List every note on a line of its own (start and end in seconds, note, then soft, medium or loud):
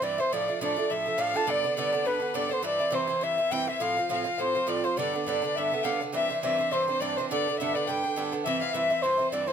0.02 0.19 G2 medium
0.02 0.19 E3 medium
0.02 0.18 C4 medium
0.02 0.17 E4 medium
0.02 0.22 D5 medium
0.02 0.21 D5 medium
0.18 0.32 E3 soft
0.18 0.33 C4 soft
0.18 0.32 E4 medium
0.18 0.34 C5 medium
0.18 0.35 C5 medium
0.32 0.49 A2 medium
0.32 0.49 F3 medium
0.32 0.48 A3 medium
0.32 0.47 D4 medium
0.32 0.60 D5 medium
0.32 0.62 D5 medium
0.48 0.60 F3 soft
0.48 0.60 A3 soft
0.48 0.61 D4 soft
0.60 0.77 A2 medium
0.60 0.77 F3 medium
0.60 0.76 A3 medium
0.60 0.75 D4 medium
0.60 0.92 D5 medium
0.60 0.93 D5 medium
0.76 0.89 F3 soft
0.76 0.90 A3 soft
0.76 0.90 D4 medium
0.90 1.06 A2 soft
0.90 1.07 F3 soft
0.90 1.06 A3 medium
0.90 1.04 D4 medium
0.90 1.19 E5 medium
0.90 1.22 E5 loud
1.06 1.17 F3 soft
1.06 1.17 A3 soft
1.06 1.18 D4 soft
1.18 1.35 A2 medium
1.18 1.35 F3 medium
1.18 1.34 A3 medium
1.18 1.33 D4 medium
1.18 1.49 F5 medium
1.18 1.38 F5 loud
1.34 1.47 F3 soft
1.34 1.47 A3 medium
1.34 1.47 D4 medium
1.34 1.52 A5 loud
1.47 1.64 G2 medium
1.47 1.64 D3 medium
1.47 1.63 B3 medium
1.47 1.63 D4 medium
1.47 1.75 D5 medium
1.47 1.78 D5 medium
1.64 1.76 D3 soft
1.64 1.77 B3 soft
1.64 1.77 D4 medium
1.76 1.93 G2 medium
1.76 1.94 D3 medium
1.76 1.93 B3 medium
1.76 1.91 D4 medium
1.76 2.07 D5 medium
1.76 2.09 D5 loud
1.92 2.05 D3 soft
1.92 2.05 B3 medium
1.92 2.06 D4 medium
2.05 2.22 G2 soft
2.05 2.21 D3 medium
2.05 2.20 B3 medium
2.05 2.18 D4 medium
2.05 2.36 B4 medium
2.05 2.38 B4 medium
2.20 2.33 D3 soft
2.20 2.34 B3 soft
2.20 2.34 D4 soft
2.34 2.51 G2 medium
2.34 2.51 D3 medium
2.34 2.50 B3 medium
2.34 2.48 D4 medium
2.34 2.52 D5 medium
2.34 2.54 D5 medium
2.49 2.62 D3 soft
2.49 2.63 B3 medium
2.49 2.64 D4 medium
2.49 2.65 C5 medium
2.62 2.80 G2 medium
2.62 2.80 E3 medium
2.62 2.80 C4 medium
2.62 2.78 E4 medium
2.62 2.95 D5 medium
2.62 2.97 D5 medium
2.79 2.91 E3 soft
2.79 2.91 C4 soft
2.79 2.92 E4 soft
2.90 3.08 G2 medium
2.90 3.09 E3 medium
2.90 3.08 C4 medium
2.90 3.06 E4 medium
2.90 3.24 C5 medium
2.95 3.25 C5 medium
3.07 3.21 E3 soft
3.07 3.22 C4 soft
3.07 3.22 E4 medium
3.21 3.38 G2 medium
3.21 3.38 E3 soft
3.21 3.37 C4 soft
3.21 3.37 E4 medium
3.21 3.54 E5 medium
3.21 3.53 E5 medium
3.38 3.50 E3 soft
3.38 3.51 C4 soft
3.38 3.51 E4 soft
3.51 3.68 G2 medium
3.51 3.68 E3 medium
3.51 3.66 C4 medium
3.51 3.66 E4 medium
3.51 3.70 G5 medium
3.51 3.68 G5 medium
3.67 3.80 E3 soft
3.67 3.80 C4 soft
3.67 3.81 E4 soft
3.67 3.83 E5 medium
3.80 3.97 A2 medium
3.80 3.97 F3 medium
3.80 3.97 C4 medium
3.80 3.96 F4 medium
3.80 4.11 F5 medium
3.80 4.10 F5 medium
3.97 4.09 F3 soft
3.97 4.09 C4 soft
3.97 4.10 F4 soft
4.09 4.26 A2 medium
4.09 4.25 F3 medium
4.09 4.24 C4 medium
4.09 4.23 F4 medium
4.09 4.37 F5 medium
4.09 4.41 F5 medium
4.24 4.38 F3 soft
4.24 4.39 C4 medium
4.24 4.38 F4 medium
4.38 4.55 A2 soft
4.38 4.55 F3 medium
4.38 4.55 C4 soft
4.38 4.54 F4 medium
4.38 4.70 C5 medium
4.55 4.66 F3 soft
4.55 4.67 C4 soft
4.55 4.67 F4 soft
4.67 4.84 A2 medium
4.67 4.84 F3 medium
4.67 4.84 C4 medium
4.67 4.83 F4 medium
4.67 4.86 D5 medium
4.84 4.97 F3 soft
4.84 4.98 C4 soft
4.84 4.97 F4 medium
4.84 4.97 C5 medium
4.84 4.99 C5 medium
4.97 5.14 G2 medium
4.97 5.14 D3 medium
4.97 5.14 B3 medium
4.97 5.12 D4 medium
4.97 5.27 D5 medium
4.97 5.25 D5 medium
5.13 5.26 D3 soft
5.13 5.27 B3 soft
5.13 5.27 D4 soft
5.26 5.43 G2 medium
5.26 5.43 D3 medium
5.26 5.42 B3 medium
5.26 5.41 D4 medium
5.26 5.59 D5 medium
5.26 5.57 D5 medium
5.42 5.57 D3 soft
5.42 5.56 B3 soft
5.42 5.56 D4 medium
5.56 5.72 G2 soft
5.56 5.73 D3 medium
5.56 5.72 B3 medium
5.56 5.70 D4 soft
5.56 5.85 E5 medium
5.56 5.84 E5 medium
5.72 5.83 D3 soft
5.72 5.84 B3 soft
5.72 5.85 D4 soft
5.83 6.01 G2 medium
5.83 6.01 D3 medium
5.83 6.01 B3 medium
5.83 5.99 D4 medium
5.83 6.01 F5 medium
5.83 5.86 G5 medium
6.01 6.13 D3 soft
6.01 6.14 B3 soft
6.01 6.13 D4 medium
6.13 6.29 G2 medium
6.13 6.30 E3 medium
6.13 6.29 C4 medium
6.13 6.28 D4 medium
6.13 6.41 E5 medium
6.13 6.42 E5 medium
6.30 6.42 E3 soft
6.30 6.42 C4 soft
6.30 6.43 D4 soft
6.43 6.59 G2 medium
6.43 6.59 E3 medium
6.43 6.59 C4 medium
6.43 6.57 D4 medium
6.43 6.74 E5 medium
6.58 6.71 E3 soft
6.58 6.72 C4 medium
6.58 6.72 D4 soft
6.71 6.88 G2 soft
6.71 6.88 E3 medium
6.71 6.87 C4 medium
6.71 6.87 D4 medium
6.71 7.03 C5 loud
6.71 6.88 C5 medium
6.88 7.01 E3 soft
6.88 7.01 C4 soft
6.88 7.01 D4 soft
6.88 7.02 C5 medium
7.00 7.17 G2 medium
7.00 7.18 E3 medium
7.00 7.18 C4 medium
7.00 7.17 D4 medium
7.00 7.18 D5 medium
7.17 7.31 E3 soft
7.17 7.31 C4 medium
7.17 7.31 D4 medium
7.17 7.29 C5 medium
7.29 7.47 G2 medium
7.29 7.47 D3 medium
7.29 7.47 B3 medium
7.29 7.46 D4 medium
7.29 7.60 D5 medium
7.29 7.57 D5 medium
7.48 7.60 D3 soft
7.48 7.60 B3 soft
7.48 7.60 D4 soft
7.58 7.76 G2 medium
7.58 7.76 D3 medium
7.58 7.75 B3 medium
7.58 7.74 D4 medium
7.58 7.75 E5 medium
7.58 7.77 E5 medium
7.74 7.87 D3 soft
7.74 7.88 B3 medium
7.74 7.88 D4 soft
7.74 7.88 D5 medium
7.74 7.89 D5 medium
7.87 8.04 G2 medium
7.87 8.04 D3 medium
7.87 8.04 B3 medium
7.87 8.03 D4 soft
7.87 8.23 G5 medium
7.87 8.33 G5 medium
8.04 8.16 D3 soft
8.04 8.16 B3 soft
8.04 8.17 D4 soft
8.16 8.33 G2 medium
8.16 8.33 D3 medium
8.16 8.32 B3 medium
8.16 8.31 D4 medium
8.32 8.45 D3 soft
8.32 8.46 B3 medium
8.32 8.46 D4 medium
8.44 8.62 G2 medium
8.44 8.62 E3 medium
8.44 8.61 C4 medium
8.44 8.60 E4 medium
8.44 8.60 E5 medium
8.44 8.73 E5 medium
8.61 8.73 E3 soft
8.61 8.74 C4 soft
8.61 8.75 E4 soft
8.61 8.75 F5 medium
8.73 8.91 G2 medium
8.73 8.91 E3 medium
8.73 8.90 C4 medium
8.73 8.89 E4 medium
8.73 9.04 E5 medium
8.73 9.04 E5 loud
8.90 9.02 E3 soft
8.90 9.03 C4 soft
8.90 9.03 E4 medium
9.02 9.20 G2 soft
9.02 9.19 E3 medium
9.02 9.18 C4 medium
9.02 9.16 E4 medium
9.02 9.31 C5 loud
9.02 9.28 C5 medium
9.17 9.31 E3 soft
9.17 9.32 C4 soft
9.17 9.32 E4 soft
9.28 9.48 G2 medium
9.28 9.35 C5 medium
9.28 9.49 D5 medium
9.32 9.48 E3 medium
9.32 9.47 C4 medium
9.32 9.46 E4 medium
9.32 9.47 D5 medium
9.48 9.53 C4 soft
9.48 9.53 E4 medium
9.48 9.53 C5 medium